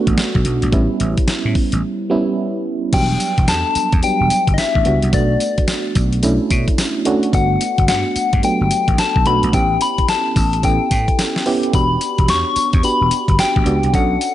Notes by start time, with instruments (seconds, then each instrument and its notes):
Already playing: fm electric piano A3 B3 D4 F#4
0.07 slap bass A1, kick, closed hi-hat
0.18 snare, closed hi-hat
0.35 slap bass B1, kick
0.45 slap bass B1, closed hi-hat
0.62 slap bass A#1, closed hi-hat
0.72 slap bass A1, fm electric piano G3 B3 C#4 E4, kick, closed hi-hat
1.00 slap bass A1, closed hi-hat
1.17 kick, closed hi-hat
1.28 muted slap bass stroke, snare, closed hi-hat
1.45 slap bass A2
1.55 kick, open hi-hat
1.72 slap bass A1, closed hi-hat
2.10 fm electric piano G3 B3 C#4 E4
2.93 slap bass E1, fm electric piano F#3 G3 B3 D4, soft synth lead G5, kick, closed hi-hat, crash, tambourine
3.20 closed hi-hat, tambourine
3.38 slap bass E1, kick, closed hi-hat
3.48 slap bass E2, soft synth lead A5, snare, closed hi-hat, tambourine
3.75 muted slap bass stroke, closed hi-hat, tambourine
3.92 slap bass E2, kick, closed hi-hat
4.03 fm electric piano F#3 G3 B3 D4, soft synth lead G5, closed hi-hat, tambourine
4.20 slap bass E1
4.30 closed hi-hat, tambourine
4.47 slap bass G1, kick, closed hi-hat
4.54 soft synth lead D#5, tambourine
4.58 soft synth lead E5, snare, closed hi-hat
4.75 slap bass A1, kick
4.85 slap bass C#2, fm electric piano G3 B3 D4 F#4, closed hi-hat
5.02 slap bass C2, closed hi-hat
5.13 slap bass B1, fm electric piano A3 B3 D4 F#4, soft synth lead D5, kick, closed hi-hat, tambourine
5.40 closed hi-hat, tambourine
5.58 muted slap bass stroke, kick, closed hi-hat
5.68 snare, closed hi-hat, tambourine
5.95 slap bass B1, kick, closed hi-hat, tambourine
6.13 closed hi-hat
6.23 slap bass B1, fm electric piano A3 C#4 D4 E4, closed hi-hat, tambourine
6.50 slap bass B2, kick, closed hi-hat, tambourine
6.68 kick, closed hi-hat
6.78 snare, closed hi-hat, tambourine
7.05 fm electric piano A3 C#4 D4 F#4, closed hi-hat
7.23 closed hi-hat
7.33 slap bass G1, fm electric piano A3 B3 D4 F#4, soft synth lead F#5, kick, closed hi-hat, tambourine
7.61 closed hi-hat, tambourine
7.78 slap bass G1, kick, closed hi-hat
7.88 slap bass G2, soft synth lead F#5, snare, closed hi-hat, tambourine
8.16 muted slap bass stroke, closed hi-hat, tambourine
8.33 slap bass G2, kick, closed hi-hat
8.43 fm electric piano F#3 A3 B3 D4, soft synth lead G5, closed hi-hat, tambourine
8.61 slap bass G1
8.71 closed hi-hat, tambourine
8.88 slap bass A1, kick, closed hi-hat
8.98 soft synth lead A5, snare, closed hi-hat, tambourine
9.16 slap bass B1, kick
9.26 slap bass B1, fm electric piano A3 B3 D4 F#4, soft synth lead B5, closed hi-hat
9.43 slap bass A#1, closed hi-hat
9.53 slap bass A1, fm electric piano B3 C#4 E4 G4, soft synth lead G5, kick, closed hi-hat, tambourine
9.81 soft synth lead B5, closed hi-hat, tambourine
9.98 muted slap bass stroke, kick, closed hi-hat
10.08 soft synth lead A5, snare, closed hi-hat, tambourine
10.36 slap bass A1, kick, open hi-hat, tambourine
10.53 closed hi-hat
10.63 slap bass A1, fm electric piano B3 C#4 E4 A4, soft synth lead G5, kick, closed hi-hat, tambourine
10.91 slap bass A2, kick, closed hi-hat, tambourine
11.08 kick, closed hi-hat
11.19 snare, closed hi-hat, tambourine
11.36 snare
11.46 fm electric piano B3 C#4 E4 G4, open hi-hat
11.63 closed hi-hat
11.73 slap bass E1, fm electric piano B3 D4 F#4 G4, soft synth lead B5, kick, closed hi-hat, tambourine
12.01 closed hi-hat, tambourine
12.18 slap bass E1, kick, closed hi-hat
12.28 slap bass E2, soft synth lead C#6, snare, closed hi-hat, tambourine
12.56 muted slap bass stroke, closed hi-hat, tambourine
12.73 slap bass E2, kick, closed hi-hat
12.83 fm electric piano B3 D4 F#4 G4, soft synth lead B5, closed hi-hat, tambourine
13.01 slap bass E1
13.11 closed hi-hat, tambourine
13.28 slap bass G1, kick, closed hi-hat
13.39 soft synth lead G5, snare, closed hi-hat, tambourine
13.56 slap bass A1, kick
13.66 slap bass C#2, fm electric piano B3 D4 F#4 G4, closed hi-hat
13.83 slap bass C2, closed hi-hat
13.93 slap bass B1, fm electric piano C#4 D4 F#4 A4, soft synth lead F#5, kick, closed hi-hat, tambourine
14.21 closed hi-hat, tambourine